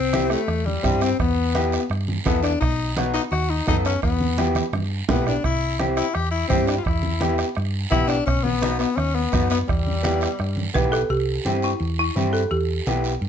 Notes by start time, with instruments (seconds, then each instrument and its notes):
Already playing: fingered electric bass C2, tenor saxophone C4
0.13 clean electric guitar C4 E4 G4, bombo rim, high conga, short guiro
0.30 tenor saxophone A3, bombo rim, short guiro
0.48 fingered electric bass E2, bombo rim, high conga, long guiro
0.65 tenor saxophone G3, high conga
0.83 fingered electric bass G2, clean electric guitar C4 E4 G4, bombo low, bombo rim, high conga, short guiro
1.01 tenor saxophone C4, bombo rim, short guiro
1.19 fingered electric bass E2, tenor saxophone B3, bombo low, bombo rim, high conga, long guiro
1.55 clean electric guitar B3 E4 G4, bombo rim, high conga, short guiro
1.72 bombo rim, short guiro
1.90 fingered electric bass G2, bombo rim, high conga, long guiro
2.08 high conga
2.25 fingered electric bass E2, tenor saxophone B3, clean electric guitar B3 E4 A4, bombo low, bombo rim, high conga, short guiro
2.43 tenor saxophone D4, bombo rim, short guiro
2.60 fingered electric bass B1, tenor saxophone D#4, bombo low, bombo rim, high conga, long guiro
2.96 clean electric guitar B3 D#4 F#4, bombo rim, high conga, short guiro
3.14 tenor saxophone D#4, bombo rim, short guiro
3.32 fingered electric bass D#2, tenor saxophone F#4, bombo rim, high conga, long guiro
3.50 tenor saxophone D#4
3.67 fingered electric bass F#2, clean electric guitar B3 D#4 A4, tenor saxophone D#4, bombo low, bombo rim, high conga, short guiro
3.85 tenor saxophone C#4, bombo rim, short guiro
4.02 fingered electric bass E2, tenor saxophone B3, bombo low, bombo rim, high conga, long guiro
4.21 high conga
4.38 clean electric guitar B3 E4 G4, bombo rim, high conga, short guiro
4.55 bombo rim, high conga, short guiro
4.73 fingered electric bass G2, bombo rim, high conga, long guiro
5.08 fingered electric bass B1, clean electric guitar B3 E4 G4, tenor saxophone B3, bombo low, bombo rim, low conga, short guiro
5.26 tenor saxophone D4, bombo rim, low conga, short guiro
5.44 fingered electric bass C2, tenor saxophone E4, bombo low, bombo rim, high conga, long guiro
5.79 clean electric guitar C4 E4 G4, bombo rim, high conga, short guiro
5.97 tenor saxophone E4, bombo rim, short guiro
6.14 fingered electric bass E2, tenor saxophone G4, bombo rim, high conga, long guiro
6.31 tenor saxophone E4
6.49 fingered electric bass G2, tenor saxophone C4, clean electric guitar C4 E4 G4, bombo low, bombo rim, high conga, short guiro
6.67 tenor saxophone D4, bombo rim, short guiro
6.78 tenor saxophone F4
6.84 fingered electric bass E2, tenor saxophone E4, bombo low, bombo rim, high conga, long guiro
7.03 high conga
7.20 clean electric guitar B3 E4 G4, bombo rim, high conga, short guiro
7.38 bombo rim, short guiro
7.55 fingered electric bass G2, bombo rim, high conga, long guiro
7.91 fingered electric bass B1, clean electric guitar B3 E4 G4, tenor saxophone E4, bombo low, bombo rim, high conga, short guiro
8.08 tenor saxophone D4, bombo rim, short guiro
8.26 fingered electric bass B1, tenor saxophone C#4, bombo low, bombo rim, high conga, long guiro
8.43 tenor saxophone B3, high conga
8.61 clean electric guitar B3 D#4 F#4, bombo rim, high conga, short guiro
8.79 tenor saxophone B3, bombo rim, short guiro
8.96 fingered electric bass D#2, tenor saxophone C#4, bombo rim, high conga, long guiro
9.15 tenor saxophone B3
9.32 fingered electric bass F#2, clean electric guitar B3 D#4 F#4, bombo low, bombo rim, high conga, short guiro
9.50 tenor saxophone B3, bombo rim, short guiro
9.68 fingered electric bass E2, tenor saxophone G3, bombo low, bombo rim, high conga, long guiro
9.87 high conga
10.03 clean electric guitar B3 E4 G4, bombo rim, high conga, short guiro
10.21 bombo rim, short guiro
10.39 fingered electric bass G2, bombo rim, high conga, long guiro
10.57 high conga
10.74 fingered electric bass B1, clean electric guitar B3 E4 G4, marimba B4, bombo low, bombo rim, high conga, short guiro
10.92 marimba A4, bombo rim, short guiro
11.10 fingered electric bass C2, marimba G4, high conga, long guiro
11.45 fingered electric bass G2, clean electric guitar C4 E4 G4, high conga, short guiro
11.62 marimba E4, short guiro
11.80 fingered electric bass E2, high conga, long guiro
11.99 marimba E4
12.16 fingered electric bass G2, clean electric guitar C4 E4 G4, high conga, short guiro
12.33 marimba A4, short guiro
12.51 fingered electric bass E2, marimba G4, high conga, long guiro
12.86 fingered electric bass B1, clean electric guitar B3 E4 G4, high conga, short guiro
13.04 short guiro
13.21 fingered electric bass G2, high conga, long guiro